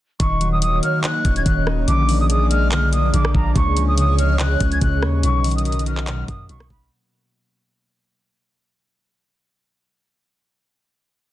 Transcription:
0.20 0.80 D#1 loud
0.20 1.86 D#3 medium
0.20 0.60 D#3 medium
0.20 3.52 A#3 medium
0.20 1.86 F#4 medium
0.20 1.86 C#5 loud
0.20 0.50 C#6 loud
0.20 kick loud
0.20 closed hi-hat medium
0.41 0.67 F#3 medium
0.41 closed hi-hat medium
0.52 0.61 D#6 medium
0.61 1.03 D#3 medium
0.61 0.81 D#6 loud
0.61 closed hi-hat medium
0.82 2.92 A#3 loud
0.82 1.02 F6 medium
0.82 closed hi-hat medium
1.04 1.45 D#3 medium
1.04 1.34 F#6 loud
1.04 clap loud
1.04 closed hi-hat medium
1.24 1.45 D#1 loud
1.24 1.94 C#4 medium
1.24 kick loud
1.24 closed hi-hat medium
1.36 1.45 G#6 medium
1.36 closed hi-hat soft
1.46 1.86 D#1 loud
1.46 1.93 D#3 medium
1.46 1.65 F#6 medium
1.46 kick loud
1.46 closed hi-hat medium
1.67 1.94 D#4 medium
1.67 cross-stick medium
1.88 2.73 A#1 loud
1.88 2.28 D3 loud
1.88 5.20 F3 medium
1.88 3.54 G#4 medium
1.88 3.54 D5 loud
1.88 2.18 D6 loud
1.88 closed hi-hat medium
2.08 2.35 F3 medium
2.08 open hi-hat medium
2.20 2.29 D#6 medium
2.29 2.70 D3 medium
2.29 2.49 D#6 medium
2.29 closed hi-hat medium
2.50 2.77 G#3 loud
2.50 2.70 F6 loud
2.50 closed hi-hat medium
2.71 3.12 B1 loud
2.71 3.12 D3 medium
2.71 2.91 F6 medium
2.71 clap loud
2.71 closed hi-hat medium
2.92 5.29 A#3 medium
2.92 3.12 D#6 medium
2.92 closed hi-hat medium
3.13 3.34 A#1 loud
3.13 3.61 D3 medium
3.13 3.33 D6 medium
3.13 closed hi-hat medium
3.25 cross-stick loud
3.34 3.55 A#1 loud
3.34 3.62 D4 medium
3.34 3.54 A#5 medium
3.34 kick loud
3.55 4.56 C#2 loud
3.55 3.96 C#3 medium
3.55 5.22 C#4 medium
3.55 5.22 G#4 medium
3.55 5.22 C#5 loud
3.55 3.86 C#6 loud
3.55 kick loud
3.55 closed hi-hat medium
3.77 4.03 F3 medium
3.77 closed hi-hat medium
3.87 3.97 D#6 medium
3.97 4.38 C#3 medium
3.97 4.18 D#6 medium
3.97 closed hi-hat medium
4.19 5.28 G#3 loud
4.19 4.38 F6 medium
4.19 closed hi-hat medium
4.39 4.81 C#3 medium
4.39 4.70 F#6 loud
4.39 clap loud
4.39 closed hi-hat medium
4.60 4.81 C#2 loud
4.60 7.50 C#4 medium
4.60 kick loud
4.60 closed hi-hat medium
4.72 4.81 G#6 medium
4.72 closed hi-hat soft
4.81 5.04 C#2 loud
4.81 5.28 C#3 medium
4.81 5.01 F#6 medium
4.81 kick loud
4.81 closed hi-hat medium
5.02 5.22 D#2 loud
5.02 6.93 C#5 medium
5.02 cross-stick medium
5.23 6.24 B1 loud
5.23 5.49 B2 medium
5.23 6.90 B2 medium
5.23 6.90 F#3 medium
5.23 6.90 A#4 medium
5.23 6.90 D#5 medium
5.23 5.54 C#6 loud
5.23 closed hi-hat medium
5.44 5.70 D#3 medium
5.44 closed hi-hat medium
5.44 open hi-hat medium
5.51 closed hi-hat medium
5.56 5.65 D#6 medium
5.56 closed hi-hat medium
5.65 6.06 B2 medium
5.65 5.85 D#6 medium
5.65 closed hi-hat medium
5.72 closed hi-hat medium
5.79 closed hi-hat medium
5.86 6.96 F#3 medium
5.86 6.06 F6 medium
5.86 closed hi-hat medium
5.97 clap medium
6.07 6.48 B2 medium
6.07 6.27 F6 medium
6.07 clap loud
6.07 closed hi-hat medium
6.28 6.49 F#2 loud
6.28 9.50 A#3 medium
6.28 6.48 D#6 medium
6.28 kick loud
6.28 closed hi-hat medium
6.49 6.69 B1 loud
6.49 6.96 B2 medium
6.49 6.69 C#6 medium
6.49 closed hi-hat medium
6.60 cross-stick loud
6.70 6.90 B1 loud
6.70 9.81 B3 medium
6.70 6.90 B5 medium
6.70 kick loud

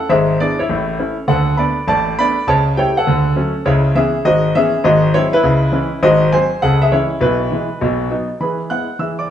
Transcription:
0.09 0.35 G#1 medium
0.09 0.35 G#2 medium
0.09 0.38 G#4 medium
0.09 0.39 E5 medium
0.40 0.56 B3 soft
0.40 0.57 D4 soft
0.40 0.57 E4 soft
0.40 0.58 G#4 medium
0.40 0.59 D5 medium
0.59 0.98 E4 medium
0.59 1.29 C#5 medium
0.69 0.94 A1 medium
0.69 0.94 A2 medium
0.99 1.15 A3 soft
0.99 1.16 C#4 soft
0.99 1.16 E4 soft
1.28 1.53 D2 medium
1.28 1.53 D3 medium
1.28 1.57 A4 medium
1.28 1.58 F#5 medium
1.57 1.74 A3 soft
1.57 1.75 B3 soft
1.57 1.74 D4 soft
1.57 1.86 D5 medium
1.57 1.87 B5 medium
1.88 2.13 A1 medium
1.88 2.13 A2 medium
1.88 2.16 D5 medium
1.88 2.17 A5 loud
2.19 2.35 A3 medium
2.19 2.35 B3 soft
2.19 2.35 D4 medium
2.19 2.46 D5 medium
2.19 2.48 B5 loud
2.47 2.72 C#2 medium
2.47 2.73 C#3 medium
2.47 2.76 C#5 medium
2.47 2.77 A5 loud
2.77 2.93 G3 soft
2.77 2.94 A3 medium
2.77 2.94 E4 medium
2.77 2.96 C#5 medium
2.77 2.96 G5 medium
2.97 3.63 A4 medium
2.97 3.66 F#5 medium
3.07 3.32 D2 medium
3.07 3.32 D3 medium
3.36 3.52 F#3 medium
3.36 3.53 A3 medium
3.36 3.53 C#4 medium
3.65 3.91 C#2 medium
3.65 3.91 C#3 medium
3.65 3.94 E4 medium
3.65 3.95 C#5 medium
3.95 4.12 E3 medium
3.95 4.12 B3 medium
3.95 4.12 C#4 soft
3.95 4.24 G#4 medium
3.95 4.25 E5 medium
4.25 4.50 G#1 medium
4.25 4.50 G#2 medium
4.25 4.53 F#4 medium
4.25 4.55 D#5 loud
4.55 4.71 E3 medium
4.55 4.72 B3 soft
4.55 4.72 C#4 medium
4.55 4.83 G#4 medium
4.55 4.85 E5 loud
4.84 5.10 G#1 medium
4.84 5.09 G#2 medium
4.84 5.12 F#4 medium
4.84 5.14 D#5 medium
5.14 5.30 F#3 soft
5.14 5.31 G#3 medium
5.14 5.31 C4 medium
5.14 5.32 E4 medium
5.14 5.33 C#5 loud
5.33 5.99 E4 medium
5.33 6.03 B4 loud
5.43 5.69 C#2 medium
5.43 5.68 C#3 medium
5.72 5.89 E3 medium
5.72 5.89 G#3 medium
5.72 5.89 C#4 medium
6.03 6.28 G#1 medium
6.03 6.28 G#2 medium
6.03 6.31 F#4 medium
6.03 6.32 D#5 medium
6.32 6.49 F#3 soft
6.32 6.49 G#3 soft
6.32 6.50 C4 soft
6.32 6.60 C5 medium
6.32 6.62 G#5 medium
6.62 6.87 C#2 medium
6.62 6.87 C#3 medium
6.62 6.81 A4 medium
6.62 6.81 F#5 medium
6.82 6.92 G#4 medium
6.82 6.92 E5 medium
6.92 7.08 E3 soft
6.92 7.08 G#3 soft
6.92 7.09 C#4 soft
6.92 7.20 E4 medium
6.92 7.21 C#5 medium
7.21 7.46 B1 medium
7.21 7.46 B2 medium
7.21 7.51 E4 medium
7.21 8.10 B4 medium
7.52 7.68 E3 soft
7.52 7.68 G#3 soft
7.52 7.68 E4 soft
7.81 8.06 B1 medium
7.81 8.06 B2 medium
8.10 8.27 F#3 soft
8.10 8.27 B3 soft
8.10 8.27 D#4 medium
8.41 8.65 E3 soft
8.41 8.58 G#4 soft
8.41 8.68 B4 soft
8.41 8.70 B5 medium
8.70 8.86 G#3 soft
8.70 8.86 B3 soft
8.70 8.86 E4 soft
8.70 8.98 F#5 medium
8.70 8.99 F#6 medium
8.99 9.24 E3 medium
8.99 9.17 G#4 soft
8.99 9.17 E5 soft
8.99 9.19 E6 medium
9.19 9.29 D5 soft
9.19 9.29 D6 medium

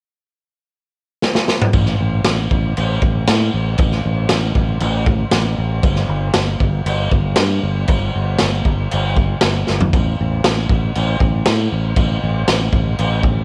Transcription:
1.22 snare medium
1.35 snare medium
1.48 snare medium
1.62 mid tom loud
1.73 1.94 A1 medium
1.73 kick loud
1.73 crash medium
1.86 snare soft
2.01 2.21 A1 medium
2.25 2.46 A1 medium
2.25 snare loud
2.25 crash medium
2.51 2.72 A1 medium
2.51 kick medium
2.77 2.98 A1 loud
2.77 crash medium
3.02 3.23 A1 medium
3.02 kick medium
3.28 3.49 A2 medium
3.28 snare loud
3.28 crash medium
3.54 3.74 A1 medium
3.78 4.00 A1 medium
3.78 kick loud
3.78 crash medium
3.92 snare soft
4.06 4.26 A1 medium
4.29 4.51 A1 loud
4.29 snare loud
4.29 crash medium
4.55 4.77 A1 medium
4.55 kick medium
4.80 5.23 A1 loud
4.80 crash medium
5.06 kick medium
5.31 5.53 A1 medium
5.31 snare loud
5.31 crash medium
5.58 5.79 A1 medium
5.83 6.05 G1 medium
5.83 kick loud
5.83 crash medium
5.96 snare soft
6.09 6.30 G1 loud
6.34 6.56 G1 medium
6.34 snare loud
6.34 crash medium
6.60 6.81 G1 medium
6.60 kick medium
6.86 7.07 G1 loud
6.86 crash medium
7.11 7.33 G1 medium
7.11 kick medium
7.36 7.58 G2 medium
7.36 snare loud
7.36 crash medium
7.63 7.84 G1 medium
7.88 8.09 G1 medium
7.88 kick loud
7.88 crash medium
8.16 8.36 G1 medium
8.39 8.61 G1 medium
8.39 snare loud
8.39 crash medium
8.65 8.86 G1 medium
8.65 kick medium
8.91 9.34 G1 loud
8.91 crash medium
9.17 kick medium
9.41 9.63 G1 medium
9.41 snare loud
9.41 crash medium
9.67 9.89 G1 medium
9.67 snare medium
9.81 floor tom loud
9.93 10.14 A1 medium
9.93 kick loud
9.93 crash medium
10.21 10.40 A1 medium
10.44 10.66 A1 medium
10.44 snare loud
10.44 crash medium
10.69 10.91 A1 medium
10.69 kick medium
10.95 11.16 A1 loud
10.95 crash medium
11.20 11.42 A1 medium
11.20 kick medium
11.46 11.67 A2 medium
11.46 snare loud
11.46 crash medium
11.72 11.92 A1 medium
11.96 12.18 A1 medium
11.96 kick loud
11.96 crash medium
12.23 12.44 A1 medium
12.48 12.69 A1 medium
12.48 snare loud
12.48 crash medium
12.73 12.94 A1 medium
12.73 kick medium
12.99 13.41 A1 loud
12.99 crash medium
13.23 kick medium

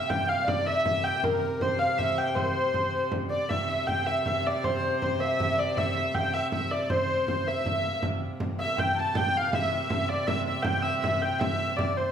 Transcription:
0.00 3.50 C3 medium
0.00 0.35 C5 medium
0.00 0.41 D5 medium
0.00 0.35 E5 medium
0.00 0.78 A5 medium
0.07 0.29 G5 medium
0.07 1.04 G5 medium
0.07 0.29 G5 medium
0.07 frame drum medium
0.27 0.46 F5 medium
0.27 0.48 F5 medium
0.44 0.67 D5 medium
0.44 2.31 D5 medium
0.44 0.67 D5 medium
0.44 frame drum medium
0.65 0.97 E5 medium
0.65 1.87 E5 medium
0.65 1.04 E5 loud
0.65 frame drum soft
0.85 frame drum medium
1.04 1.24 G5 medium
1.04 2.18 G5 medium
1.23 1.61 A#4 medium
1.23 1.42 A#4 medium
1.23 1.62 A#4 medium
1.23 frame drum medium
1.43 3.55 A#4 medium
1.59 1.79 C5 medium
1.59 2.37 C5 medium
1.59 1.80 C5 medium
1.59 frame drum medium
1.79 1.98 F5 medium
1.79 1.97 F5 medium
1.79 frame drum soft
1.98 2.19 E5 medium
1.98 2.18 E5 medium
1.98 3.51 E5 medium
1.98 frame drum medium
2.18 2.38 G5 medium
2.18 2.37 G5 medium
2.18 3.73 G5 medium
2.36 3.08 C5 medium
2.36 2.45 C5 medium
2.36 4.35 C5 medium
2.36 frame drum medium
2.43 2.52 A#4 medium
2.50 3.12 C5 medium
2.54 frame drum soft
2.74 frame drum medium
2.93 frame drum soft
3.12 frame drum medium
3.30 3.51 D5 medium
3.30 3.49 D5 medium
3.30 4.82 D5 medium
3.30 frame drum soft
3.49 8.00 C3 medium
3.49 3.68 E5 medium
3.49 3.87 E5 medium
3.49 3.69 E5 medium
3.49 frame drum medium
3.68 3.87 E5 medium
3.87 4.06 G5 loud
3.87 4.05 G5 medium
3.87 5.44 G5 medium
3.87 frame drum medium
4.05 4.24 E5 medium
4.05 4.27 E5 medium
4.05 4.24 E5 medium
4.05 frame drum soft
4.25 5.20 E5 medium
4.25 4.61 E5 medium
4.25 4.47 E5 medium
4.25 frame drum medium
4.47 4.64 D5 medium
4.62 4.98 C5 medium
4.62 5.00 C5 medium
4.62 5.02 C5 medium
4.62 frame drum medium
4.82 5.58 D5 medium
5.00 5.18 C5 medium
5.00 6.90 C5 medium
5.00 5.20 C5 medium
5.00 frame drum medium
5.18 5.24 E5 medium
5.18 5.59 E5 medium
5.18 5.39 E5 medium
5.18 frame drum soft
5.23 5.31 F5 medium
5.29 5.38 E5 medium
5.38 5.56 E5 medium
5.38 frame drum medium
5.57 5.63 D5 medium
5.57 6.71 D5 medium
5.57 5.78 D5 medium
5.76 5.94 E5 medium
5.76 5.96 E5 medium
5.76 5.97 E5 medium
5.76 frame drum medium
5.95 6.13 E5 medium
5.95 6.34 E5 medium
5.95 6.14 E5 medium
6.14 6.21 G5 medium
6.14 6.34 G5 medium
6.14 frame drum medium
6.19 6.26 F5 medium
6.24 6.35 G5 medium
6.34 6.51 E5 medium
6.34 6.73 E5 medium
6.34 frame drum soft
6.51 6.71 E5 medium
6.51 frame drum medium
6.71 6.92 D5 medium
6.71 6.90 D5 medium
6.71 7.10 D5 medium
6.90 7.29 C5 medium
6.90 7.26 C5 medium
6.90 8.89 C5 medium
6.90 frame drum medium
7.10 8.95 D5 medium
7.27 7.33 C5 medium
7.27 7.48 C5 medium
7.27 frame drum medium
7.46 7.99 E5 medium
7.46 8.03 E5 medium
7.46 7.91 E5 medium
7.46 frame drum soft
7.66 frame drum medium
7.84 8.65 F5 medium
8.01 12.12 C3 medium
8.01 frame drum medium
8.40 frame drum medium
8.58 8.78 E5 medium
8.58 9.42 E5 medium
8.58 8.80 E5 medium
8.58 frame drum soft
8.77 8.94 G5 medium
8.77 9.17 G5 medium
8.77 8.99 G5 medium
8.77 frame drum medium
8.94 9.13 A5 medium
8.94 10.41 A5 medium
8.99 9.17 A5 loud
9.15 9.54 G5 medium
9.15 9.37 G5 loud
9.15 10.65 G5 medium
9.15 frame drum loud
9.36 9.60 F5 medium
9.36 9.55 F5 medium
9.52 9.71 E5 medium
9.52 9.73 E5 medium
9.52 9.72 E5 medium
9.52 frame drum medium
9.71 9.89 E5 medium
9.71 10.09 E5 medium
9.71 10.28 E5 medium
9.71 frame drum soft
9.90 10.08 E5 medium
9.90 frame drum medium
10.09 10.29 D5 medium
10.09 10.27 D5 medium
10.09 11.76 D5 medium
10.27 10.46 E5 medium
10.27 10.47 E5 medium
10.27 frame drum medium
10.46 10.64 E5 medium
10.46 10.82 E5 medium
10.63 10.83 G5 loud
10.63 11.20 G5 medium
10.63 10.86 G5 medium
10.63 frame drum medium
10.82 11.02 E5 medium
10.82 11.03 E5 medium
10.82 frame drum soft
11.02 11.22 E5 medium
11.02 11.23 E5 medium
11.02 frame drum medium
11.20 12.12 G5 medium
11.20 11.39 G5 medium
11.20 11.42 G5 medium
11.39 11.77 E5 medium
11.39 11.81 E5 medium
11.39 12.12 E5 medium
11.39 frame drum medium
11.77 11.97 D5 medium
11.77 12.12 D5 medium
11.77 11.98 D5 medium
11.77 frame drum medium
11.97 12.12 C5 medium

